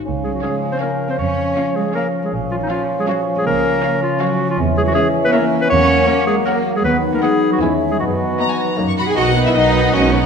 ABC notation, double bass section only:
X:1
M:3/4
L:1/8
Q:1/4=159
K:Db
V:1 name="Double bass section" clef=bass
D,,2 z4 | F,,2 z4 | B,,,2 z4 | D,,2 z4 |
[K:B] E,,2 z4 | E,,2 z4 | D,,2 z2 E,,2 | F,,2 z2 F,,2 |
B,,,2 B,,,2 B,,,2 |]